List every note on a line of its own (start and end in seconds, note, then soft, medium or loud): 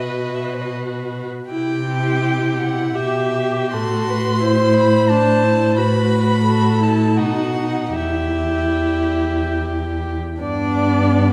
0.00 1.27 B2 soft
0.00 1.26 F#4 soft
0.00 1.31 B4 soft
0.00 0.36 D#5 soft
0.35 0.46 E5 soft
0.44 0.55 D#5 soft
0.54 0.63 C5 soft
0.61 0.72 D#5 soft
1.50 2.92 C3 soft
1.50 1.85 E4 soft
1.50 2.92 G4 soft
1.50 2.61 G5 medium
1.88 2.97 E4 soft
2.59 2.97 F#5 medium
2.95 3.75 B2 soft
2.95 3.72 G4 soft
2.95 3.75 G4 soft
2.95 3.72 E5 medium
3.72 5.78 A2 soft
3.72 4.42 F#4 soft
3.72 4.11 A4 soft
3.72 4.75 C6 medium
4.10 4.44 B4 soft
4.41 5.12 E4 soft
4.41 5.11 C5 soft
4.74 5.10 B5 medium
5.09 5.46 D4 soft
5.09 5.77 A5 medium
5.13 5.80 C5 soft
5.44 5.79 E4 soft
5.77 7.21 A2 soft
5.77 6.45 F#4 soft
5.77 6.45 B4 soft
5.77 6.85 B5 medium
6.45 6.81 F#4 soft
6.45 7.17 A4 soft
6.81 7.20 E4 soft
6.81 7.19 A5 medium
7.17 7.96 B2 soft
7.17 7.56 D#4 soft
7.17 7.94 F#4 soft
7.17 7.96 F#5 medium
7.57 7.98 D#4 soft
7.96 10.17 E2 soft
7.96 10.21 E4 soft
7.96 10.16 G4 soft
7.96 9.59 E5 soft
10.41 11.33 G2 soft
10.41 11.33 B3 medium
10.41 11.33 D4 medium
10.41 11.33 D5 medium